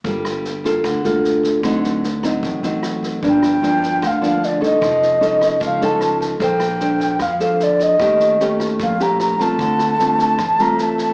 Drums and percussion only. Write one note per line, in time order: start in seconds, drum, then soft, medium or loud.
0.05 kick soft
0.05 snare soft
0.25 cross-stick soft
0.25 snare soft
0.45 snare soft
0.64 kick soft
0.64 snare soft
0.84 kick soft
0.84 cross-stick soft
0.84 snare soft
1.04 snare soft
1.24 snare soft
1.43 kick soft
1.43 snare soft
1.63 kick soft
1.63 cross-stick soft
1.63 snare soft
1.84 snare soft
2.04 snare soft
2.23 kick soft
2.23 cross-stick soft
2.23 snare soft
2.43 kick soft
2.43 snare soft
2.63 snare soft
2.83 cross-stick soft
2.83 snare soft
3.03 kick soft
3.03 snare soft
3.23 kick soft
3.23 snare soft
3.42 cross-stick medium
3.42 snare soft
3.63 snare soft
3.82 kick soft
3.82 snare soft
4.02 kick soft
4.02 cross-stick soft
4.02 snare soft
4.23 snare soft
4.43 snare soft
4.62 kick soft
4.62 snare soft
4.82 kick soft
4.82 cross-stick soft
4.82 snare soft
5.02 snare soft
5.22 snare soft
5.41 kick soft
5.41 cross-stick soft
5.41 snare soft
5.61 kick medium
5.61 snare soft
5.81 snare soft
6.01 cross-stick soft
6.01 snare soft
6.21 kick soft
6.21 snare soft
6.40 kick soft
6.40 snare soft
6.60 cross-stick medium
6.60 snare soft
6.80 snare soft
7.00 kick soft
7.00 snare soft
7.19 kick medium
7.19 cross-stick medium
7.19 snare soft
7.40 snare soft
7.60 snare soft
7.79 kick soft
7.79 snare soft
8.00 kick medium
8.00 cross-stick soft
8.00 snare soft
8.20 snare soft
8.40 snare soft
8.60 kick soft
8.60 cross-stick soft
8.60 snare soft
8.79 kick medium
8.79 snare soft
9.00 snare soft
9.20 cross-stick soft
9.20 snare soft
9.39 kick soft
9.39 snare soft
9.59 kick medium
9.59 snare soft
9.79 cross-stick soft
9.79 snare soft
9.99 snare soft
10.19 kick soft
10.19 snare soft
10.38 kick soft
10.38 cross-stick soft
10.38 snare soft
10.58 snare soft
10.78 snare soft
10.98 kick soft
10.98 snare soft